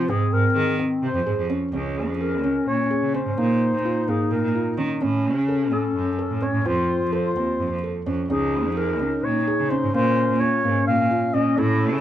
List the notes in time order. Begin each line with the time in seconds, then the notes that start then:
Already playing: F4 C5
0.09 G#2 C4 G#4
0.32 G#2 A#4
0.56 D#3 G#4
0.79 C4
1.03 C3 C5
1.15 F2
1.26 G#2 G#4
1.38 F2
1.50 C#4
1.73 C#2 C#4 G#4
2.08 F2
2.20 G#4 A#4
2.43 C#2 C#4
2.67 A#2 C#5
2.90 G#4
3.02 C#3
3.14 C#4 C5
3.26 G#2
3.38 A#2 A#3 D#4
3.73 A#2
3.85 F4
4.08 G#2 A#3 G#4
4.31 A#2 A#4
4.43 A#2
4.55 F4
4.78 D#3 C#4
5.01 A2 C#4
5.35 C#3
5.48 A4
5.71 A2 C#4 A4
5.95 F#2
6.19 A4
6.30 A2
6.42 C#4 C#5
6.54 A2
6.66 F2 C4 F4 C5
7.01 F2
7.12 A4 C5
7.36 D#2 C4
7.60 F2
7.71 F2
7.83 A4
8.06 F2 C#4
8.30 C#2 C#4 D#4 G#4
8.65 F2
8.77 G#4 A#4
9.00 C#2 C#4
9.24 A#2 C#5
9.47 G#4
9.59 C#3
9.70 C#4 C5
9.83 G#2
9.93 A#2 A#3 C#4 C5
10.29 A#2
10.40 F4 C#5
10.64 G#2 A#3
10.87 A#2 F5
10.99 A#2
11.11 F4
11.34 A#2 C#4 D#5
11.57 A2 C#4 E4 A4
11.93 C#3